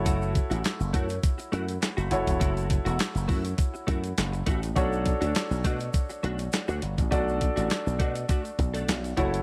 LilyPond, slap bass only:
\new Staff \with { instrumentName = "Slap bass" } { \clef bass \time 4/4 \key b \minor \tempo 4 = 102 fis,,8. a,,16 r16 fis,,16 fis,8 r8 fis,8 r16 fis,,16 fis,,16 e,,16 | fis,,8. e,,16 r16 fis,,16 fis,8 r8 fis,8 fis,,8 a,,8 | b,,8. d,16 r16 b,,16 b,8 r8 b,,8 r16 d,16 g,,16 a,,16 | b,,8. a,,16 r16 b,,16 b,8 r8 b,,8 b,,8 fis,,8 | }